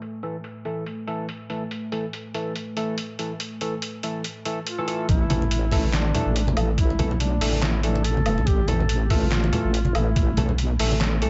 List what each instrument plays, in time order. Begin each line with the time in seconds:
Already playing: analog synth pad A3
0.02 closed hi-hat
0.23 tine electric piano E3 A3 A4, closed hi-hat
0.44 closed hi-hat
0.65 tine electric piano E3 A3 A4, closed hi-hat
0.86 closed hi-hat
1.07 tine electric piano E3 A3 A4, closed hi-hat
1.29 closed hi-hat
1.50 tine electric piano E3 A3 A4, closed hi-hat
1.71 closed hi-hat
1.92 tine electric piano E3 A3 A4, closed hi-hat
2.13 closed hi-hat
2.34 tine electric piano E3 A3 A4, closed hi-hat
2.56 closed hi-hat
2.77 tine electric piano E3 A3 A4, closed hi-hat
2.98 closed hi-hat
3.19 tine electric piano E3 A3 A4, closed hi-hat
3.40 closed hi-hat
3.61 tine electric piano E3 A3 A4, closed hi-hat
3.82 closed hi-hat
4.03 tine electric piano E3 A3 A4, closed hi-hat
4.24 closed hi-hat
4.45 tine electric piano E3 A3 A4, closed hi-hat
4.67 duduk F4, closed hi-hat
4.78 tine electric piano E3 A3 A4
4.88 tine electric piano E3 A3 A4, closed hi-hat
5.09 wobble bass A1, analog synth pad A3, duduk E4, kick, closed hi-hat
5.30 tine electric piano E3 A3 A4, closed hi-hat, high conga, low conga
5.42 muted conga, low conga
5.51 closed hi-hat
5.71 tine electric piano E3 A3 A4, kick, open hi-hat, muted conga
5.84 high conga
5.93 duduk D4, snare, clap, closed hi-hat
6.15 tine electric piano E3 A3 A4, closed hi-hat, muted conga, low conga
6.26 wobble bass A1
6.36 closed hi-hat
6.47 muted conga, high conga
6.57 wobble bass A1, tine electric piano E3 A3 A4, closed hi-hat, low woodblock
6.77 duduk E4, kick, closed hi-hat
6.90 muted conga
6.99 wobble bass B1, tine electric piano E3 A3 A4, closed hi-hat, high conga, low conga
7.11 low conga
7.20 duduk D4, closed hi-hat, muted conga
7.41 wobble bass A1, tine electric piano E3 A3 A4, open hi-hat
7.53 high conga
7.62 duduk E4, snare, clap, closed hi-hat, muted conga
7.83 tine electric piano E3 A3 A4, duduk D4, closed hi-hat
7.95 muted conga
8.04 duduk A4, closed hi-hat
8.17 high conga
8.26 wobble bass E1, tine electric piano E3 A3 A4, closed hi-hat, low woodblock
8.37 wobble bass C2, muted conga
8.47 wobble bass A1, duduk G4, kick, closed hi-hat
8.68 tine electric piano E3 A3 A4, duduk A4, closed hi-hat, muted conga, high conga, low conga
8.80 low conga
8.89 closed hi-hat
9.04 duduk G4
9.10 tine electric piano E3 A3 A4, duduk F4, kick, open hi-hat, muted conga
9.23 high conga
9.32 snare, clap, closed hi-hat
9.44 muted conga
9.53 tine electric piano E3 A3 A4, closed hi-hat, low conga
9.65 wobble bass A1
9.74 closed hi-hat
9.85 muted conga, high conga
9.95 wobble bass A1, tine electric piano E3 A3 A4, duduk E4, closed hi-hat, low woodblock
10.16 kick, closed hi-hat, muted conga
10.37 wobble bass B1, tine electric piano E3 A3 A4, closed hi-hat, high conga, low conga
10.49 low conga
10.58 closed hi-hat, muted conga
10.79 wobble bass A1, tine electric piano E3 A3 A4, open hi-hat
10.91 muted conga, high conga
11.01 snare, clap, closed hi-hat
11.22 wobble bass C2, tine electric piano E3 A3 A4, closed hi-hat